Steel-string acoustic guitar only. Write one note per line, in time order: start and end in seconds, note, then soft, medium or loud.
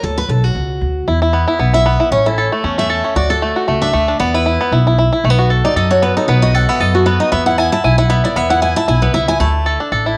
0.04 0.17 A4 medium
0.18 0.29 B4 loud
0.29 0.44 A4 medium
0.44 1.07 F#4 medium
1.74 2.09 E5 loud
2.12 2.25 C#5 medium
2.26 2.61 A4 medium
2.79 3.14 E5 loud
3.16 3.30 D5 medium
3.30 3.65 A4 medium
3.82 4.17 E5 loud
4.20 4.34 D5 loud
4.34 4.72 B4 medium
5.65 5.76 D5 medium
5.77 5.90 D#5 medium
5.91 6.02 C#5 medium
6.03 6.16 B4 medium
6.17 6.28 A4 medium
6.28 6.42 B4 medium
6.42 6.55 D#5 medium
6.55 6.69 F#5 loud
6.69 6.80 E5 loud
6.80 6.94 D#5 medium
6.95 7.06 F#4 medium
7.06 7.20 B4 medium
7.20 7.31 D#5 medium
7.32 7.46 E5 medium
7.46 7.58 F#5 loud
7.58 7.72 G#5 medium
7.72 7.84 A5 loud
7.84 7.98 G#5 loud
7.98 8.10 F#5 loud
8.10 8.24 E5 medium
8.25 8.36 D5 medium
8.36 8.50 E5 medium
8.50 8.62 F#5 loud
8.62 8.76 G#5 medium
8.76 8.88 A5 loud
8.88 9.02 G#5 medium
9.02 9.14 B4 medium
9.14 9.28 E5 medium
9.28 9.40 G#5 loud
9.40 9.78 A5 medium